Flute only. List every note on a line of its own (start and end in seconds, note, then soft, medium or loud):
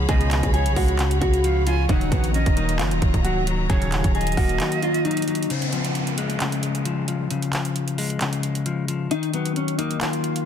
0.09 0.51 D#5 loud
0.54 0.96 C#5 medium
1.44 1.66 F5 medium
1.67 1.88 G#5 loud
1.89 2.32 F#5 loud
2.34 2.77 D#5 medium
3.70 4.12 C#5 loud
4.15 5.46 D#5 loud